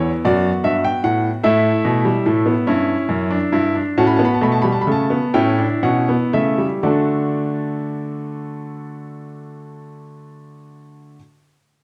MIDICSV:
0, 0, Header, 1, 2, 480
1, 0, Start_track
1, 0, Key_signature, 2, "major"
1, 0, Tempo, 798935
1, 863, Time_signature, 12, 3, 24, 8
1, 1354, Tempo, 841515
1, 1834, Tempo, 891530
1, 2794, Tempo, 953895
1, 3274, Tempo, 1006711
1, 3754, Tempo, 1032702
1, 6077, End_track
2, 0, Start_track
2, 0, Title_t, "Grand piano"
2, 0, Program_c, 0, 0
2, 0, Note_on_c, 0, 40, 71
2, 0, Note_on_c, 0, 59, 81
2, 0, Note_on_c, 0, 64, 80
2, 0, Note_on_c, 0, 73, 77
2, 60, Note_off_c, 0, 40, 0
2, 61, Note_off_c, 0, 73, 0
2, 129, Note_off_c, 0, 64, 0
2, 149, Note_on_c, 0, 42, 79
2, 150, Note_on_c, 0, 66, 77
2, 151, Note_on_c, 0, 74, 85
2, 294, Note_off_c, 0, 42, 0
2, 296, Note_off_c, 0, 74, 0
2, 383, Note_on_c, 0, 43, 68
2, 385, Note_on_c, 0, 76, 83
2, 500, Note_off_c, 0, 76, 0
2, 508, Note_on_c, 0, 79, 83
2, 531, Note_off_c, 0, 43, 0
2, 621, Note_off_c, 0, 79, 0
2, 623, Note_on_c, 0, 45, 70
2, 624, Note_on_c, 0, 78, 76
2, 773, Note_off_c, 0, 45, 0
2, 773, Note_off_c, 0, 78, 0
2, 841, Note_off_c, 0, 59, 0
2, 843, Note_off_c, 0, 66, 0
2, 862, Note_on_c, 0, 57, 79
2, 864, Note_on_c, 0, 64, 84
2, 864, Note_on_c, 0, 76, 84
2, 865, Note_on_c, 0, 45, 79
2, 1016, Note_off_c, 0, 45, 0
2, 1109, Note_on_c, 0, 47, 77
2, 1219, Note_off_c, 0, 57, 0
2, 1231, Note_on_c, 0, 55, 74
2, 1262, Note_off_c, 0, 47, 0
2, 1350, Note_off_c, 0, 55, 0
2, 1357, Note_on_c, 0, 57, 66
2, 1358, Note_on_c, 0, 45, 73
2, 1470, Note_off_c, 0, 57, 0
2, 1470, Note_on_c, 0, 59, 69
2, 1504, Note_off_c, 0, 45, 0
2, 1571, Note_off_c, 0, 64, 0
2, 1587, Note_off_c, 0, 59, 0
2, 1591, Note_on_c, 0, 61, 75
2, 1594, Note_on_c, 0, 64, 74
2, 1595, Note_on_c, 0, 43, 73
2, 1744, Note_off_c, 0, 43, 0
2, 1830, Note_on_c, 0, 42, 72
2, 1940, Note_off_c, 0, 61, 0
2, 1947, Note_on_c, 0, 62, 77
2, 1976, Note_off_c, 0, 42, 0
2, 2057, Note_off_c, 0, 64, 0
2, 2062, Note_off_c, 0, 62, 0
2, 2065, Note_on_c, 0, 43, 80
2, 2065, Note_on_c, 0, 64, 82
2, 2181, Note_off_c, 0, 64, 0
2, 2187, Note_on_c, 0, 62, 68
2, 2213, Note_off_c, 0, 43, 0
2, 2284, Note_off_c, 0, 76, 0
2, 2303, Note_off_c, 0, 62, 0
2, 2308, Note_on_c, 0, 45, 77
2, 2308, Note_on_c, 0, 81, 71
2, 2309, Note_on_c, 0, 61, 80
2, 2309, Note_on_c, 0, 66, 79
2, 2357, Note_off_c, 0, 81, 0
2, 2358, Note_on_c, 0, 83, 69
2, 2407, Note_off_c, 0, 83, 0
2, 2409, Note_on_c, 0, 81, 66
2, 2424, Note_off_c, 0, 61, 0
2, 2424, Note_on_c, 0, 59, 76
2, 2455, Note_on_c, 0, 83, 72
2, 2457, Note_off_c, 0, 45, 0
2, 2458, Note_off_c, 0, 81, 0
2, 2503, Note_on_c, 0, 81, 64
2, 2506, Note_off_c, 0, 83, 0
2, 2542, Note_off_c, 0, 59, 0
2, 2543, Note_on_c, 0, 47, 73
2, 2543, Note_on_c, 0, 57, 75
2, 2553, Note_on_c, 0, 83, 68
2, 2556, Note_off_c, 0, 81, 0
2, 2601, Note_on_c, 0, 81, 68
2, 2607, Note_off_c, 0, 83, 0
2, 2653, Note_on_c, 0, 83, 66
2, 2657, Note_off_c, 0, 81, 0
2, 2664, Note_off_c, 0, 57, 0
2, 2665, Note_on_c, 0, 55, 71
2, 2697, Note_off_c, 0, 47, 0
2, 2709, Note_off_c, 0, 83, 0
2, 2711, Note_on_c, 0, 81, 64
2, 2759, Note_on_c, 0, 83, 66
2, 2764, Note_off_c, 0, 81, 0
2, 2788, Note_off_c, 0, 55, 0
2, 2788, Note_on_c, 0, 49, 67
2, 2790, Note_on_c, 0, 57, 69
2, 2813, Note_off_c, 0, 83, 0
2, 2814, Note_on_c, 0, 81, 78
2, 2906, Note_off_c, 0, 57, 0
2, 2906, Note_on_c, 0, 59, 68
2, 2937, Note_off_c, 0, 49, 0
2, 3012, Note_off_c, 0, 66, 0
2, 3023, Note_off_c, 0, 81, 0
2, 3024, Note_off_c, 0, 59, 0
2, 3025, Note_on_c, 0, 64, 73
2, 3026, Note_on_c, 0, 61, 79
2, 3026, Note_on_c, 0, 79, 75
2, 3027, Note_on_c, 0, 45, 79
2, 3146, Note_off_c, 0, 61, 0
2, 3148, Note_on_c, 0, 62, 69
2, 3179, Note_off_c, 0, 45, 0
2, 3179, Note_off_c, 0, 79, 0
2, 3269, Note_off_c, 0, 62, 0
2, 3272, Note_on_c, 0, 61, 72
2, 3273, Note_on_c, 0, 47, 72
2, 3273, Note_on_c, 0, 78, 73
2, 3387, Note_off_c, 0, 61, 0
2, 3396, Note_on_c, 0, 59, 72
2, 3420, Note_off_c, 0, 47, 0
2, 3420, Note_off_c, 0, 78, 0
2, 3510, Note_off_c, 0, 59, 0
2, 3513, Note_on_c, 0, 49, 68
2, 3513, Note_on_c, 0, 57, 70
2, 3513, Note_on_c, 0, 76, 69
2, 3629, Note_off_c, 0, 57, 0
2, 3631, Note_on_c, 0, 55, 60
2, 3663, Note_off_c, 0, 49, 0
2, 3663, Note_off_c, 0, 76, 0
2, 3733, Note_off_c, 0, 64, 0
2, 3749, Note_on_c, 0, 50, 67
2, 3750, Note_off_c, 0, 55, 0
2, 3750, Note_on_c, 0, 66, 62
2, 3751, Note_on_c, 0, 57, 68
2, 3751, Note_on_c, 0, 74, 62
2, 3764, Note_on_c, 0, 69, 54
2, 3766, Note_on_c, 0, 62, 59
2, 5758, Note_off_c, 0, 50, 0
2, 5759, Note_off_c, 0, 66, 0
2, 5760, Note_off_c, 0, 57, 0
2, 5760, Note_off_c, 0, 74, 0
2, 5773, Note_off_c, 0, 69, 0
2, 5775, Note_off_c, 0, 62, 0
2, 6077, End_track
0, 0, End_of_file